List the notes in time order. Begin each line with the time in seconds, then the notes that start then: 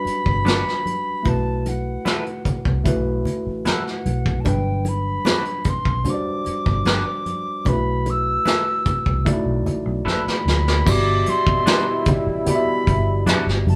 Already playing: F#3 G3 D4 F#4 B4 B5
0.05 muted fingered electric bass stroke, closed hi-hat, muted conga
0.26 G1, kick
0.45 D4 F#4 B4, snare, closed hi-hat, high conga
0.68 snare
0.86 closed hi-hat, high conga
1.23 B1 A3 E4 F#4 B4, kick, closed hi-hat, muted conga
1.29 A5
1.66 F#5, closed hi-hat, muted conga
2.05 E4 A4 B4, snare, closed hi-hat, high conga
2.26 closed hi-hat
2.45 muted fingered electric bass stroke, kick, closed hi-hat, low conga
2.65 C2, kick
2.84 B1 A3 E4 F#4 B4, kick, closed hi-hat, low conga
3.25 closed hi-hat, muted conga, low conga
3.46 A1
3.65 E4 A4 B4 F#5, snare, closed hi-hat, high conga
3.87 snare
4.06 B1, closed hi-hat, high conga
4.26 kick
4.41 G3 A5
4.45 G1 F#3 D4 B4 G5, kick, closed hi-hat, muted conga
4.85 B5, closed hi-hat, muted conga
5.25 D4 F#4 B4, snare, closed hi-hat, high conga
5.45 closed hi-hat
5.64 muted fingered electric bass stroke, kick, closed hi-hat
5.69 C6
5.85 B1, kick
6.04 G3 D4 F#4 C5, closed hi-hat, low conga
6.10 D6
6.14 D5
6.45 muted fingered electric bass stroke, closed hi-hat, muted conga
6.66 G1, kick
6.85 D4 F#4 B4, snare, closed hi-hat, high conga
7.26 closed hi-hat, high conga
7.65 B1 A3 D4 F#4 B4 B5, kick, closed hi-hat, muted conga
7.73 E4
8.06 closed hi-hat, muted conga
8.10 E6
8.45 E4 A4 B4, snare, closed hi-hat, high conga
8.85 muted fingered electric bass stroke, kick, closed hi-hat, low conga
9.06 C2, kick
9.25 A3 D#4 F#4 D5, kick, closed hi-hat, low conga
9.32 E4
9.46 B1
9.66 A1, closed hi-hat, low conga
9.85 B1
10.05 A1 E4 A4 B4, snare, high conga
10.09 B5
10.28 snare
10.45 D2, snare, high conga
10.68 snare
10.85 G1 B2 G3 B3 E4 F#4 G4 D5, kick, crash, muted conga
10.90 D6
11.26 C6, closed hi-hat, muted conga
11.47 kick
11.66 D4 F#4 B4, snare, closed hi-hat, high conga
12.05 muted fingered electric bass stroke, kick, closed hi-hat, low conga
12.27 A1
12.46 B3 F#4 G4 D5 B5, closed hi-hat, low conga
12.55 E5
12.87 G1, kick, closed hi-hat
13.26 D4 F#4 B4, snare, closed hi-hat, high conga
13.47 G1, snare
13.67 F#1 A5, open hi-hat, high conga